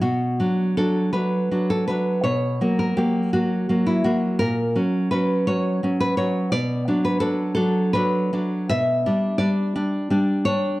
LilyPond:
\new Staff \with { instrumentName = "Nylon-string guitar" } { \time 6/8 \key b \minor \tempo 4. = 55 << { fis'4 a'8 b'8. a'16 b'8 | cis''8. ais'16 g'8 fis'8. e'16 fis'8 | ais'4 b'8 cis''8. b'16 cis''8 | d''8. b'16 a'8 a'8 b'4 |
\key g \lydian e''4 d''4. cis''8 | } \\ { b,8 <fis d'>8 <fis d'>8 <fis d'>8 <fis d'>8 <fis d'>8 | b,8 <fis ais>8 <fis ais>8 <fis ais>8 <fis ais>8 <fis ais>8 | ais,8 <fis cis'>8 <fis cis'>8 <fis cis'>8 <fis cis'>8 <fis cis'>8 | b,8 <fis d'>8 <fis d'>8 <fis d'>8 <fis d'>8 <fis d'>8 |
b,8 <g d'>8 <g d'>8 <g d'>8 <g d'>8 <g d'>8 | } >> }